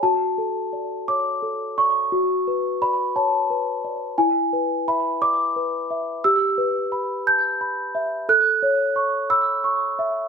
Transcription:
\new Staff \with { instrumentName = "Celesta" } { \time 6/8 \key e \mixolydian \tempo 4. = 58 << { a''4. d'''4 cis'''8~ | cis'''4 b''8 a''4. | gis''4 b''8 d'''4. | \key e \dorian e'''4. g'''4. |
fis'''4. e'''8 r4 | } \\ { fis'8 a'8 d''8 cis''8 a'8 d''8 | fis'8 b'8 d''8 cis''8 b'8 d''8 | e'8 b'8 e''8 d''8 b'8 e''8 | g'8 b'8 b''8 a''8 b''8 e''8 |
a'8 cis''8 cis'''8 b''8 cis'''8 e''8 | } >> }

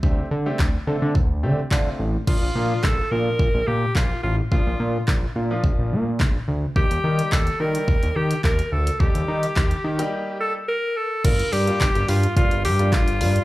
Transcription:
<<
  \new Staff \with { instrumentName = "Alto saxophone" } { \time 4/4 \key bes \major \tempo 4 = 107 r1 | f'4 a'8 bes'4 g'8 f'8 f'8 | f'4 r2. | g'4 a'8 bes'4 g'8 bes'8 a'8 |
g'2~ g'8 a'8 bes'8 a'8 | bes'8 g'4 f'8 f'8 g'8 f'4 | }
  \new Staff \with { instrumentName = "Grand piano" } { \time 4/4 \key bes \major <a c' d' g'>8 r16 <a c' d' g'>8 r16 <a c' d' a'>8 r8 <a c' d' g'>16 r16 <a c' d' f'>8 r8 | <f bes d' f'>16 r16 <f bes d' f'>8 r8 <f bes d' f'>4 r4. | <f bes d' f'>8. r8. <d' f'>16 <f bes d' f'>4 r4 r16 | <g bes ees' g'>16 r16 <g bes ees' g'>8 r8 <g bes ees' g'>4 r4. |
<g bes ees' a'>8. r8. <ees' g'>16 <g bes ees' g'>4 r4 r16 | <g bes d' f'>8 r16 <g bes d' f'>16 r16 <g bes d' g'>8 r16 <g bes d' f'>8 r16 <g bes d' f'>8 r16 <g bes d' f'>16 r16 | }
  \new Staff \with { instrumentName = "Analog synth bass" } { \clef bass \time 4/4 \key bes \major d,8 d8 d,8 d16 d16 d,8 d8 d8 a,,8 | bes,,16 bes,,16 bes,8 bes,,8 bes,8 bes,,16 bes,,16 bes,8 bes,,8 a,,8 | bes,,16 bes,,16 bes,8 bes,,8 bes,8 bes,,16 bes,,16 bes,8 bes,,8 d,8 | ees,16 ees,16 ees8 ees,8 ees8 ees,16 ees,16 ees8 ees,8 d,8 |
ees,16 ees,16 ees8 ees,8 ees8 r2 | g,,8 g,8 g,,16 g,,16 g,8 g,,8 g,8 g,,8 g,8 | }
  \new DrumStaff \with { instrumentName = "Drums" } \drummode { \time 4/4 bd4 <hc bd>4 bd4 <hc bd>4 | <cymc bd>4 <hc bd>4 bd4 <hc bd>4 | bd4 <hc bd>4 bd4 <hc bd>4 | bd16 hh8 hh16 <hc bd>16 hh8 hh16 bd16 hh8 hh16 <hc bd>16 hh8 hh16 |
bd16 hh8 hh16 <hc bd>16 hh8 hh16 r4 r4 | <cymc hh bd>16 hh16 hho16 hh16 <hc hh bd>16 hh16 hho16 hh16 <hh bd>16 hh16 hho16 hh16 <hc hh bd>16 hh16 hho16 hh16 | }
>>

